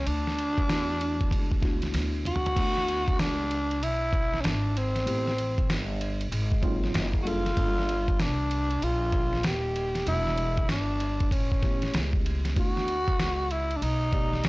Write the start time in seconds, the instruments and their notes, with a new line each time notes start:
0.06 upright bass D2, tenor saxophone D4, ride
0.27 snare
0.38 ride
0.58 kick, ride
0.68 upright bass E2, tine electric piano A3 B3 D4 E4 F#4, snare, hi-hat pedal, ride
1.01 ride
1.21 kick, ride
1.31 upright bass C#2, kick, ride
1.52 kick
1.61 tine electric piano A3 B3 D4 E4 F#4, kick, snare, ride
1.82 snare, ride
1.94 upright bass D2, snare, hi-hat pedal, ride
2.25 tenor saxophone F#4, mid tom, ride
2.36 floor tom
2.46 floor tom, ride
2.55 upright bass D2, tine electric piano A3 B3 D4 E4 F#4, kick, crash, ride
2.78 snare
2.88 ride
3.08 kick, ride
3.19 upright bass C#2, tenor saxophone D4, snare, hi-hat pedal, ride
3.51 ride
3.71 ride
3.81 upright bass B1, tenor saxophone E4, ride
4.13 kick, ride
4.34 snare
4.41 upright bass G#1, tenor saxophone C#4, hi-hat pedal, ride
4.45 tenor saxophone D4, snare
4.77 tenor saxophone C4, ride
4.96 snare, ride
5.06 upright bass A1, tine electric piano A3 B3 C4 E4 G4, ride
5.27 snare
5.38 ride
5.58 kick, ride
5.69 upright bass G1, snare, hi-hat pedal, ride
6.01 ride
6.21 ride
6.32 upright bass G#1, ride
6.52 kick
6.62 tine electric piano F#3 A#3 C4 D#4 F4, kick, ride
6.84 snare
6.94 upright bass F#1, snare, hi-hat pedal, ride
7.14 kick
7.22 tine electric piano G3 A#3 D4, tenor saxophone F#4
7.26 tine electric piano F4 A4, tenor saxophone F4, ride
7.46 snare, ride
7.56 upright bass G1, tine electric piano G3 A#3 D4 F4 A4, kick, ride
7.78 snare
7.89 ride
8.08 kick, ride
8.19 upright bass C2, tenor saxophone D4, snare, hi-hat pedal, ride
8.51 ride
8.71 ride
8.82 upright bass A#1, tenor saxophone F4, ride
9.12 kick, ride
9.33 snare
9.43 upright bass D#1, tenor saxophone G4, snare, hi-hat pedal, ride
9.76 ride
9.95 snare, ride
10.06 upright bass E1, tine electric piano G3 B3 D4 E4 F#4, tenor saxophone E4, ride
10.27 snare
10.38 ride
10.57 kick, ride
10.69 upright bass G1, tenor saxophone D4, snare, hi-hat pedal, ride
11.00 ride
11.20 kick, ride
11.31 upright bass A1, tenor saxophone C#4, kick, ride
11.52 kick
11.61 tine electric piano A3 B3 C#4 E4 G4, kick, snare, ride
11.82 snare, ride
11.94 upright bass C#2, snare, hi-hat pedal, ride
12.13 kick
12.26 ride
12.45 snare, ride
12.55 upright bass D2, tine electric piano A3 B3 D4 E4 F#4, kick, ride
12.59 tenor saxophone F#4
12.77 snare
12.88 ride
13.08 kick, ride
13.19 upright bass C#2, snare, hi-hat pedal, ride
13.51 tenor saxophone E4, ride
13.71 ride
13.77 tenor saxophone D4
13.82 upright bass B1, tenor saxophone D#4, ride
14.11 tine electric piano A3 B3 D#4 G4 D5, kick, ride
14.33 snare
14.44 upright bass D#2, tenor saxophone D4, snare, hi-hat pedal, ride